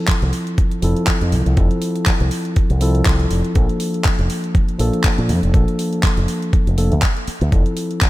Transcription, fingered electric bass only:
0.22 0.30 C2 medium
0.83 0.93 F1 medium
1.21 1.34 F2 medium
1.32 1.42 C2 medium
1.46 1.54 C2 medium
1.57 1.67 F1 medium
2.21 2.28 C2 medium
2.70 3.01 C2 medium
3.06 3.24 C2 medium
3.31 3.41 F1 medium
3.56 3.65 A#1 medium
4.19 4.27 F1 medium
4.80 4.89 A#1 medium
5.18 5.31 A#2 medium
5.29 5.39 F2 medium
5.43 5.51 F1 medium
5.54 5.64 A#1 loud
6.17 6.25 F1 medium
6.67 6.91 F1 medium
6.92 7.00 D2 loud
7.28 muted fingered electric bass stroke soft
7.41 7.49 D2 medium
7.52 7.62 F1 loud

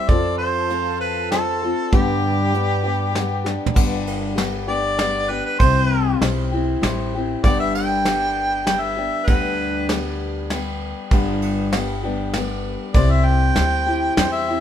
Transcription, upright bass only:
0.09 1.72 F2 medium
1.93 3.56 G2 medium
3.76 5.40 G1 medium
5.60 6.15 C2 medium
6.21 6.73 B1 medium
6.82 7.34 A1 medium
7.44 9.08 G1 medium
9.28 10.92 D2 medium
11.11 12.75 G1 medium
12.95 13.49 C2 medium
13.56 14.08 D2 medium
14.17 14.60 E2 medium

